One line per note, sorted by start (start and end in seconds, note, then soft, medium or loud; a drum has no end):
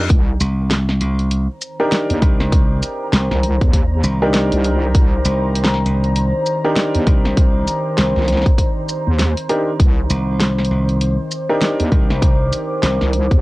0.10 0.38 C2 loud
0.10 13.41 D#3 medium
0.10 kick loud
0.10 closed hi-hat medium
0.35 13.41 C5 medium
0.35 10.10 A#5 medium
0.40 0.99 C2 loud
0.40 closed hi-hat medium
0.40 shaker medium
0.70 snare loud
0.70 closed hi-hat medium
0.89 snare medium
1.01 1.46 C2 loud
1.01 closed hi-hat medium
1.19 closed hi-hat soft
1.31 closed hi-hat medium
1.61 shaker medium
1.80 4.18 D4 medium
1.80 4.18 D#4 medium
1.80 4.18 G4 medium
1.80 4.18 A#4 loud
1.92 snare loud
1.92 closed hi-hat medium
2.10 2.20 D#2 loud
2.10 closed hi-hat medium
2.22 2.37 C2 loud
2.22 kick loud
2.22 closed hi-hat medium
2.40 2.81 C2 loud
2.40 snare medium
2.52 kick loud
2.52 closed hi-hat medium
2.83 closed hi-hat medium
2.83 shaker medium
3.13 3.28 C2 loud
3.13 snare loud
3.13 closed hi-hat medium
3.31 3.58 C2 loud
3.31 snare medium
3.43 closed hi-hat medium
3.61 4.02 D#2 medium
3.61 kick loud
3.61 closed hi-hat soft
3.73 kick medium
3.73 closed hi-hat medium
4.04 4.49 C2 loud
4.04 shaker medium
4.22 6.60 D4 medium
4.22 6.60 D#4 medium
4.22 6.60 G4 medium
4.22 6.60 A#4 loud
4.34 snare loud
4.34 closed hi-hat medium
4.52 4.93 C2 loud
4.52 closed hi-hat medium
4.65 closed hi-hat medium
4.95 5.23 C2 loud
4.95 kick loud
4.95 closed hi-hat medium
5.25 5.84 C2 loud
5.25 closed hi-hat medium
5.25 shaker medium
5.55 closed hi-hat medium
5.64 snare loud
5.74 snare medium
5.86 6.31 C2 loud
5.86 closed hi-hat medium
6.04 closed hi-hat soft
6.16 closed hi-hat medium
6.46 shaker medium
6.65 9.03 D4 medium
6.65 9.03 D#4 medium
6.65 9.03 G4 medium
6.65 9.03 A#4 loud
6.76 snare loud
6.76 closed hi-hat medium
6.95 7.05 D#2 loud
6.95 closed hi-hat medium
7.07 7.22 C2 loud
7.07 kick loud
7.07 closed hi-hat medium
7.25 7.66 C2 loud
7.25 snare medium
7.37 kick loud
7.37 closed hi-hat medium
7.68 closed hi-hat medium
7.68 shaker medium
7.98 8.13 C2 loud
7.98 snare loud
7.98 closed hi-hat medium
8.16 8.43 C2 loud
8.16 snare soft
8.19 snare soft
8.22 snare soft
8.25 snare soft
8.28 snare soft
8.28 closed hi-hat medium
8.33 snare soft
8.37 snare soft
8.42 snare soft
8.46 kick loud
8.46 closed hi-hat soft
8.58 kick medium
8.58 closed hi-hat medium
8.89 shaker medium
9.07 9.34 D#2 loud
9.19 snare loud
9.19 closed hi-hat medium
9.37 closed hi-hat medium
9.49 9.69 D4 medium
9.49 9.69 D#4 medium
9.49 9.69 G4 medium
9.49 9.69 A#4 medium
9.49 closed hi-hat medium
9.80 10.08 C2 loud
9.80 kick loud
9.80 closed hi-hat medium
10.07 10.69 C2 loud
10.07 13.41 D6 medium
10.07 closed hi-hat medium
10.07 shaker medium
10.40 snare loud
10.40 closed hi-hat medium
10.58 snare medium
10.64 closed hi-hat medium
10.71 11.16 C2 loud
10.89 closed hi-hat soft
11.01 closed hi-hat medium
11.31 shaker medium
11.49 13.41 D4 medium
11.49 13.41 D#4 medium
11.49 13.41 G4 medium
11.49 13.41 A#4 loud
11.61 snare loud
11.61 closed hi-hat medium
11.80 11.90 D#2 loud
11.80 closed hi-hat medium
11.92 12.07 C2 loud
11.92 kick loud
11.92 closed hi-hat medium
12.10 12.51 C2 loud
12.10 snare medium
12.22 kick loud
12.22 closed hi-hat medium
12.53 closed hi-hat medium
12.53 shaker medium
12.83 12.98 C2 loud
12.83 snare loud
12.83 closed hi-hat medium
13.01 13.28 C2 loud
13.01 snare medium
13.13 closed hi-hat medium
13.31 13.41 D#2 loud
13.31 kick loud
13.31 closed hi-hat soft